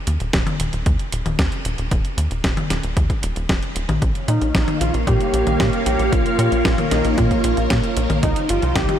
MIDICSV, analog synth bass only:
0, 0, Header, 1, 2, 480
1, 0, Start_track
1, 0, Tempo, 526316
1, 1746, Time_signature, 4, 2, 24, 8
1, 8199, End_track
2, 0, Start_track
2, 0, Title_t, "Analog synth bass"
2, 0, Program_c, 0, 38
2, 65, Note_on_c, 0, 39, 95
2, 164, Note_off_c, 0, 39, 0
2, 186, Note_on_c, 0, 27, 78
2, 284, Note_off_c, 0, 27, 0
2, 306, Note_on_c, 0, 27, 98
2, 404, Note_off_c, 0, 27, 0
2, 545, Note_on_c, 0, 27, 90
2, 644, Note_off_c, 0, 27, 0
2, 665, Note_on_c, 0, 27, 80
2, 764, Note_off_c, 0, 27, 0
2, 786, Note_on_c, 0, 39, 99
2, 884, Note_off_c, 0, 39, 0
2, 1026, Note_on_c, 0, 27, 87
2, 1124, Note_off_c, 0, 27, 0
2, 1146, Note_on_c, 0, 27, 78
2, 1244, Note_off_c, 0, 27, 0
2, 1266, Note_on_c, 0, 39, 98
2, 1364, Note_off_c, 0, 39, 0
2, 1504, Note_on_c, 0, 27, 91
2, 1603, Note_off_c, 0, 27, 0
2, 1625, Note_on_c, 0, 27, 81
2, 1724, Note_off_c, 0, 27, 0
2, 1746, Note_on_c, 0, 27, 105
2, 1844, Note_off_c, 0, 27, 0
2, 1984, Note_on_c, 0, 39, 89
2, 2083, Note_off_c, 0, 39, 0
2, 2105, Note_on_c, 0, 27, 78
2, 2203, Note_off_c, 0, 27, 0
2, 2226, Note_on_c, 0, 27, 97
2, 2324, Note_off_c, 0, 27, 0
2, 2464, Note_on_c, 0, 27, 95
2, 2563, Note_off_c, 0, 27, 0
2, 2584, Note_on_c, 0, 27, 80
2, 2683, Note_off_c, 0, 27, 0
2, 2706, Note_on_c, 0, 39, 96
2, 2804, Note_off_c, 0, 39, 0
2, 2944, Note_on_c, 0, 27, 90
2, 3043, Note_off_c, 0, 27, 0
2, 3064, Note_on_c, 0, 27, 80
2, 3163, Note_off_c, 0, 27, 0
2, 3186, Note_on_c, 0, 27, 100
2, 3284, Note_off_c, 0, 27, 0
2, 3424, Note_on_c, 0, 27, 88
2, 3523, Note_off_c, 0, 27, 0
2, 3545, Note_on_c, 0, 34, 84
2, 3644, Note_off_c, 0, 34, 0
2, 3666, Note_on_c, 0, 34, 96
2, 3764, Note_off_c, 0, 34, 0
2, 3904, Note_on_c, 0, 46, 91
2, 4003, Note_off_c, 0, 46, 0
2, 4024, Note_on_c, 0, 34, 77
2, 4123, Note_off_c, 0, 34, 0
2, 4146, Note_on_c, 0, 34, 101
2, 4244, Note_off_c, 0, 34, 0
2, 4384, Note_on_c, 0, 34, 96
2, 4483, Note_off_c, 0, 34, 0
2, 4505, Note_on_c, 0, 34, 81
2, 4604, Note_off_c, 0, 34, 0
2, 4625, Note_on_c, 0, 46, 98
2, 4724, Note_off_c, 0, 46, 0
2, 4864, Note_on_c, 0, 34, 90
2, 4963, Note_off_c, 0, 34, 0
2, 4985, Note_on_c, 0, 34, 79
2, 5084, Note_off_c, 0, 34, 0
2, 5106, Note_on_c, 0, 46, 97
2, 5204, Note_off_c, 0, 46, 0
2, 5345, Note_on_c, 0, 34, 89
2, 5444, Note_off_c, 0, 34, 0
2, 5464, Note_on_c, 0, 34, 79
2, 5563, Note_off_c, 0, 34, 0
2, 5586, Note_on_c, 0, 34, 98
2, 5684, Note_off_c, 0, 34, 0
2, 5823, Note_on_c, 0, 46, 91
2, 5923, Note_off_c, 0, 46, 0
2, 5943, Note_on_c, 0, 34, 78
2, 6043, Note_off_c, 0, 34, 0
2, 6066, Note_on_c, 0, 34, 103
2, 6164, Note_off_c, 0, 34, 0
2, 6305, Note_on_c, 0, 34, 91
2, 6404, Note_off_c, 0, 34, 0
2, 6426, Note_on_c, 0, 34, 84
2, 6524, Note_off_c, 0, 34, 0
2, 6546, Note_on_c, 0, 46, 100
2, 6644, Note_off_c, 0, 46, 0
2, 6786, Note_on_c, 0, 34, 92
2, 6884, Note_off_c, 0, 34, 0
2, 6906, Note_on_c, 0, 34, 81
2, 7004, Note_off_c, 0, 34, 0
2, 7026, Note_on_c, 0, 46, 100
2, 7124, Note_off_c, 0, 46, 0
2, 7265, Note_on_c, 0, 34, 94
2, 7364, Note_off_c, 0, 34, 0
2, 7386, Note_on_c, 0, 34, 79
2, 7484, Note_off_c, 0, 34, 0
2, 7506, Note_on_c, 0, 36, 99
2, 7604, Note_off_c, 0, 36, 0
2, 7747, Note_on_c, 0, 31, 87
2, 7845, Note_off_c, 0, 31, 0
2, 7867, Note_on_c, 0, 36, 81
2, 7964, Note_off_c, 0, 36, 0
2, 7986, Note_on_c, 0, 36, 101
2, 8084, Note_off_c, 0, 36, 0
2, 8199, End_track
0, 0, End_of_file